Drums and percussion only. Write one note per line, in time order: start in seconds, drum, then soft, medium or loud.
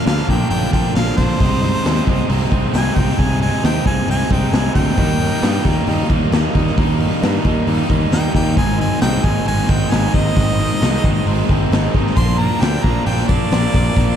0.06 snare medium
0.06 open hi-hat medium
0.29 kick medium
0.29 open hi-hat medium
0.51 open hi-hat medium
0.73 kick medium
0.73 open hi-hat medium
0.95 snare loud
0.95 open hi-hat medium
1.18 kick medium
1.18 open hi-hat medium
1.30 snare soft
1.40 kick loud
1.40 open hi-hat medium
1.63 open hi-hat medium
1.85 snare medium
1.85 open hi-hat medium
2.07 kick medium
2.07 open hi-hat medium
2.29 open hi-hat medium
2.52 kick medium
2.52 open hi-hat medium
2.74 snare loud
2.74 open hi-hat medium
2.97 kick medium
2.97 open hi-hat medium
3.09 snare soft
3.19 kick loud
3.19 open hi-hat medium
3.41 open hi-hat medium
3.63 snare loud
3.63 open hi-hat medium
3.86 kick medium
3.86 open hi-hat medium
4.08 open hi-hat medium
4.31 kick medium
4.31 open hi-hat soft
4.53 snare loud
4.53 open hi-hat medium
4.75 kick medium
4.75 open hi-hat medium
4.88 snare soft
4.97 kick loud
4.97 open hi-hat medium
5.20 open hi-hat medium
5.42 snare loud
5.42 open hi-hat medium
5.65 kick medium
5.65 open hi-hat medium
5.87 open hi-hat medium
6.10 kick medium
6.10 open hi-hat medium
6.32 snare medium
6.32 open hi-hat medium
6.55 kick medium
6.55 open hi-hat medium
6.68 snare soft
6.78 kick loud
6.78 open hi-hat medium
7.00 open hi-hat medium
7.22 snare medium
7.22 open hi-hat medium
7.44 kick medium
7.44 open hi-hat medium
7.67 open hi-hat medium
7.90 kick medium
7.90 open hi-hat medium
8.12 snare loud
8.12 open hi-hat medium
8.34 kick medium
8.34 open hi-hat medium
8.57 kick loud
8.57 open hi-hat medium
8.79 open hi-hat medium
9.01 snare loud
9.01 open hi-hat medium
9.24 kick medium
9.24 open hi-hat medium
9.46 open hi-hat medium
9.69 kick medium
9.69 open hi-hat medium
9.91 snare loud
9.91 open hi-hat medium
10.14 kick medium
10.14 open hi-hat medium
10.37 kick loud
10.37 open hi-hat medium
10.60 open hi-hat medium
10.82 snare medium
10.82 open hi-hat medium
11.04 kick medium
11.04 open hi-hat medium
11.27 open hi-hat medium
11.49 kick medium
11.49 open hi-hat medium
11.72 snare loud
11.72 open hi-hat medium
11.94 kick medium
11.94 open hi-hat soft
12.07 snare soft
12.17 kick loud
12.17 open hi-hat medium
12.39 open hi-hat medium
12.62 snare loud
12.62 open hi-hat medium
12.84 kick medium
12.84 open hi-hat medium
13.07 open hi-hat medium
13.29 kick medium
13.29 open hi-hat medium
13.51 snare loud
13.51 open hi-hat medium
13.74 kick medium
13.74 open hi-hat medium
13.96 kick loud
13.96 open hi-hat medium